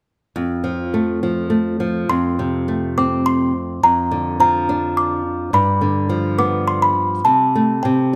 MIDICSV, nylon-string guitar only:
0, 0, Header, 1, 2, 480
1, 0, Start_track
1, 0, Key_signature, -1, "major"
1, 0, Tempo, 576369
1, 299, Time_signature, 3, 2, 24, 8
1, 6791, End_track
2, 0, Start_track
2, 0, Title_t, "Nylon-string guitar"
2, 0, Program_c, 0, 24
2, 297, Note_on_c, 0, 41, 56
2, 531, Note_on_c, 0, 53, 47
2, 781, Note_on_c, 0, 57, 47
2, 1013, Note_off_c, 0, 53, 0
2, 1023, Note_on_c, 0, 53, 49
2, 1238, Note_off_c, 0, 57, 0
2, 1248, Note_on_c, 0, 57, 49
2, 1488, Note_off_c, 0, 53, 0
2, 1498, Note_on_c, 0, 53, 48
2, 1703, Note_off_c, 0, 41, 0
2, 1721, Note_off_c, 0, 57, 0
2, 1733, Note_off_c, 0, 53, 0
2, 1745, Note_on_c, 0, 41, 56
2, 1991, Note_on_c, 0, 48, 46
2, 2232, Note_on_c, 0, 57, 48
2, 2479, Note_on_c, 0, 60, 48
2, 2925, Note_off_c, 0, 48, 0
2, 3160, Note_off_c, 0, 41, 0
2, 3162, Note_off_c, 0, 57, 0
2, 3172, Note_off_c, 0, 60, 0
2, 3192, Note_on_c, 0, 41, 55
2, 3426, Note_on_c, 0, 50, 48
2, 3662, Note_on_c, 0, 53, 48
2, 3906, Note_on_c, 0, 62, 50
2, 4341, Note_off_c, 0, 50, 0
2, 4574, Note_off_c, 0, 41, 0
2, 4579, Note_off_c, 0, 53, 0
2, 4591, Note_off_c, 0, 62, 0
2, 4607, Note_on_c, 0, 43, 59
2, 4841, Note_on_c, 0, 50, 47
2, 5076, Note_on_c, 0, 53, 51
2, 5316, Note_on_c, 0, 59, 51
2, 5767, Note_off_c, 0, 50, 0
2, 6006, Note_off_c, 0, 43, 0
2, 6008, Note_off_c, 0, 53, 0
2, 6016, Note_off_c, 0, 59, 0
2, 6040, Note_on_c, 0, 48, 58
2, 6291, Note_on_c, 0, 57, 51
2, 6512, Note_off_c, 0, 48, 0
2, 6524, Note_off_c, 0, 57, 0
2, 6537, Note_on_c, 0, 48, 55
2, 6791, Note_off_c, 0, 48, 0
2, 6791, End_track
0, 0, End_of_file